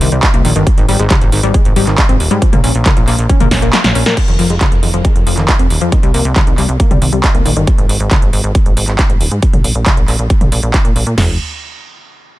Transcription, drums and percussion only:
0.01 open hi-hat loud
0.12 closed hi-hat soft
0.23 kick loud
0.23 clap loud
0.23 closed hi-hat medium
0.34 closed hi-hat soft
0.45 open hi-hat medium
0.56 closed hi-hat soft
0.67 kick loud
0.67 closed hi-hat medium
0.78 closed hi-hat soft
0.89 open hi-hat loud
1.00 closed hi-hat soft
1.10 kick loud
1.10 clap loud
1.10 closed hi-hat medium
1.10 mid tom medium
1.21 closed hi-hat soft
1.32 open hi-hat medium
1.43 closed hi-hat soft
1.54 kick loud
1.54 closed hi-hat medium
1.65 closed hi-hat soft
1.76 open hi-hat loud
1.87 clap soft
1.87 closed hi-hat soft
1.98 kick loud
1.98 clap loud
1.98 closed hi-hat medium
2.09 closed hi-hat soft
2.20 open hi-hat medium
2.31 closed hi-hat soft
2.42 kick loud
2.42 closed hi-hat medium
2.53 closed hi-hat soft
2.53 mid tom medium
2.64 open hi-hat loud
2.75 closed hi-hat soft
2.86 kick loud
2.86 clap loud
2.86 closed hi-hat medium
2.86 mid tom medium
2.97 closed hi-hat soft
3.08 clap soft
3.08 open hi-hat medium
3.19 closed hi-hat soft
3.29 kick loud
3.29 closed hi-hat medium
3.40 closed hi-hat soft
3.40 mid tom medium
3.51 kick medium
3.51 snare medium
3.51 open hi-hat loud
3.62 closed hi-hat soft
3.73 snare medium
3.73 clap loud
3.73 closed hi-hat medium
3.84 snare medium
3.84 closed hi-hat soft
3.95 open hi-hat medium
4.06 snare medium
4.17 kick loud
4.17 closed hi-hat medium
4.17 crash loud
4.28 closed hi-hat soft
4.39 open hi-hat loud
4.50 closed hi-hat soft
4.61 kick loud
4.61 clap loud
4.61 closed hi-hat medium
4.61 mid tom medium
4.72 closed hi-hat soft
4.83 open hi-hat medium
4.94 closed hi-hat soft
5.05 kick loud
5.05 closed hi-hat medium
5.16 closed hi-hat soft
5.27 open hi-hat loud
5.38 clap soft
5.38 closed hi-hat soft
5.48 kick loud
5.48 clap loud
5.48 closed hi-hat medium
5.59 closed hi-hat soft
5.70 open hi-hat medium
5.81 closed hi-hat soft
5.92 kick loud
5.92 closed hi-hat medium
6.03 closed hi-hat soft
6.14 open hi-hat loud
6.25 closed hi-hat soft
6.36 kick loud
6.36 clap loud
6.36 closed hi-hat medium
6.36 mid tom medium
6.47 closed hi-hat soft
6.58 clap soft
6.58 open hi-hat medium
6.69 closed hi-hat soft
6.80 kick loud
6.80 closed hi-hat medium
6.91 closed hi-hat soft
6.91 mid tom medium
7.02 open hi-hat loud
7.13 closed hi-hat soft
7.24 kick loud
7.24 clap loud
7.24 closed hi-hat medium
7.35 closed hi-hat soft
7.46 open hi-hat loud
7.57 closed hi-hat soft
7.67 kick loud
7.67 closed hi-hat medium
7.78 closed hi-hat soft
7.89 open hi-hat loud
8.00 closed hi-hat soft
8.11 kick loud
8.11 clap loud
8.11 closed hi-hat medium
8.11 mid tom medium
8.22 closed hi-hat soft
8.33 open hi-hat medium
8.44 closed hi-hat soft
8.55 kick loud
8.55 closed hi-hat medium
8.66 closed hi-hat soft
8.77 open hi-hat loud
8.88 clap soft
8.88 closed hi-hat soft
8.99 kick loud
8.99 clap loud
8.99 closed hi-hat medium
9.10 closed hi-hat soft
9.21 open hi-hat loud
9.32 closed hi-hat soft
9.42 kick loud
9.42 closed hi-hat medium
9.53 closed hi-hat soft
9.53 mid tom medium
9.64 open hi-hat loud
9.75 closed hi-hat soft
9.86 kick loud
9.86 clap loud
9.86 closed hi-hat medium
9.86 mid tom medium
9.97 closed hi-hat soft
10.08 clap soft
10.08 open hi-hat medium
10.19 closed hi-hat soft
10.30 kick loud
10.30 closed hi-hat medium
10.41 closed hi-hat soft
10.41 mid tom medium
10.52 open hi-hat loud
10.63 closed hi-hat soft
10.74 kick loud
10.74 clap loud
10.74 closed hi-hat medium
10.85 closed hi-hat soft
10.96 open hi-hat loud
11.07 closed hi-hat soft
11.18 snare loud
11.18 floor tom loud
11.18 crash medium

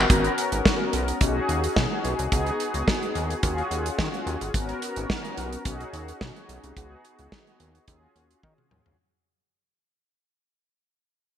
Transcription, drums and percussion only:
0.10 kick loud
0.10 closed hi-hat medium
0.24 closed hi-hat soft
0.38 closed hi-hat medium
0.52 closed hi-hat medium
0.65 kick loud
0.65 snare loud
0.93 closed hi-hat medium
1.08 closed hi-hat medium
1.21 kick loud
1.21 closed hi-hat medium
1.49 closed hi-hat medium
1.64 closed hi-hat medium
1.76 kick loud
1.76 snare loud
2.05 closed hi-hat medium
2.19 closed hi-hat medium
2.32 kick loud
2.32 closed hi-hat medium
2.46 closed hi-hat soft
2.60 closed hi-hat medium
2.74 closed hi-hat medium
2.88 kick loud
2.88 snare loud
3.03 closed hi-hat soft
3.15 closed hi-hat medium
3.30 closed hi-hat medium
3.43 kick loud
3.43 closed hi-hat medium
3.58 closed hi-hat soft
3.71 closed hi-hat medium
3.86 closed hi-hat medium
3.99 kick loud
3.99 snare loud
4.14 closed hi-hat soft
4.27 closed hi-hat medium
4.41 closed hi-hat medium
4.54 kick loud
4.54 closed hi-hat medium
4.69 closed hi-hat soft
4.82 closed hi-hat medium
4.96 closed hi-hat medium
5.10 kick loud
5.10 snare loud
5.25 closed hi-hat soft
5.37 closed hi-hat medium
5.53 closed hi-hat medium
5.65 kick loud
5.65 closed hi-hat medium
5.81 closed hi-hat soft
5.94 closed hi-hat medium
6.08 closed hi-hat medium
6.21 kick loud
6.21 snare loud
6.36 closed hi-hat soft
6.49 closed hi-hat medium
6.64 closed hi-hat medium
6.77 kick loud
6.77 closed hi-hat medium
7.05 closed hi-hat medium
7.19 closed hi-hat medium
7.32 kick loud
7.32 snare loud
7.47 closed hi-hat soft
7.60 closed hi-hat medium
7.75 closed hi-hat medium
7.88 kick loud
7.88 closed hi-hat medium
8.16 closed hi-hat medium
8.31 closed hi-hat medium
8.43 kick loud
8.43 high tom medium
8.58 mid tom medium
8.71 mid tom medium
8.86 floor tom medium

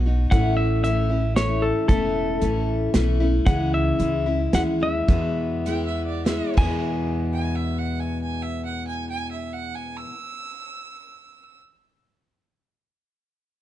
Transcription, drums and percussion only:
0.32 kick loud
0.32 closed hi-hat medium
0.84 closed hi-hat medium
1.36 snare medium
1.36 closed hi-hat medium
1.89 kick loud
1.89 closed hi-hat medium
2.42 closed hi-hat medium
2.94 snare medium
2.94 closed hi-hat medium
3.46 kick loud
3.46 closed hi-hat medium
4.00 closed hi-hat medium
4.53 snare medium
4.53 closed hi-hat medium
5.08 kick medium
5.08 closed hi-hat medium
5.66 closed hi-hat soft
6.26 snare medium
6.26 closed hi-hat medium
6.57 kick medium
6.57 crash medium

